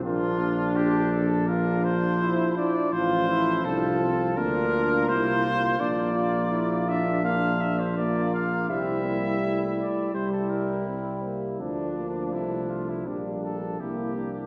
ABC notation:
X:1
M:4/4
L:1/16
Q:1/4=83
K:Bblyd
V:1 name="Trumpet"
F4 G2 A2 B2 c4 d2 | c4 A4 B4 c4 | d6 e2 f2 e c d2 f2 | e6 d2 c A B2 z4 |
D4 E2 F E D2 A2 G4 |]
V:2 name="Flugelhorn"
D6 z2 D4 E4 | F4 F4 F8 | F8 F2 z2 F4 | E8 E8 |
D8 D4 E2 D2 |]
V:3 name="Trombone"
B,2 D6 F2 z2 E2 D2 | F2 E2 D2 C2 D4 E2 F2 | D2 F2 E2 D8 z2 | C2 B,2 A,4 G,4 C2 B,2 |
A,2 B,2 A,4 B,4 B,4 |]
V:4 name="French horn" clef=bass
F,6 z2 F,8 | F,4 F,4 B,8 | B,8 B,2 z2 B,4 | G,8 G,8 |
F,8 G,4 B,2 z2 |]
V:5 name="Tuba" clef=bass
B,,,12- B,,,2 z2 | A,,,4 C,,4 D,,4 C,,4 | B,,,16 | C,,6 z2 C,,8 |
D,,4 C,,4 B,,,4 C,,4 |]